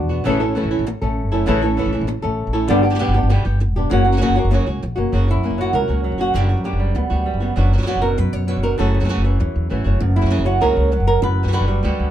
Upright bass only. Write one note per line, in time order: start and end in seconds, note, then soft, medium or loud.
0.03 0.22 E2 medium
0.26 0.58 A1 medium
0.64 0.76 A1 medium
0.79 0.92 A1 medium
1.02 1.26 A1 medium
1.26 1.44 F#1 medium
1.48 1.80 A1 medium
1.86 1.99 A1 medium
2.01 2.14 A1 medium
2.24 2.43 A1 medium
2.47 2.66 A1 medium
2.70 3.02 G1 medium
3.08 3.21 G1 medium
3.23 3.36 G1 medium
3.46 3.69 G1 medium
3.69 3.88 E1 medium
3.92 4.24 F#1 medium
4.29 4.42 F#1 medium
4.45 4.57 F#1 medium
4.67 4.81 C#2 medium
4.83 4.96 A#1 medium
4.97 5.11 F#1 medium
5.13 5.32 F#1 medium
5.36 5.48 F#2 medium
5.51 5.70 F#1 medium
5.73 5.86 C#2 medium
5.88 6.08 C#2 medium
6.12 6.31 F#1 medium
6.34 6.54 F#1 medium
6.57 6.70 F#2 medium
6.73 6.92 F#1 medium
6.95 7.08 D2 medium
7.11 7.30 D2 medium
7.34 7.53 F#1 medium
7.57 7.76 F#1 medium
7.80 7.92 F#2 medium
7.95 8.14 F#1 medium
8.19 8.31 F#2 medium
8.34 8.53 F#2 medium
8.56 8.75 F#1 medium
8.80 8.98 F#1 medium
9.03 9.15 F#2 medium
9.17 9.36 F#1 medium
9.40 9.53 E2 medium
9.56 9.68 E2 medium
9.71 9.84 G#1 medium
9.86 9.99 F#1 medium
10.01 10.20 F#1 medium
10.24 10.36 F#2 medium
10.39 10.58 F#1 medium
10.62 10.75 C#2 medium
10.77 10.96 C#2 medium
11.00 11.19 F#1 medium
11.22 11.42 F#1 medium
11.45 11.58 F#2 medium
11.61 11.80 F#1 medium
11.84 11.97 D2 medium
12.00 12.11 D2 medium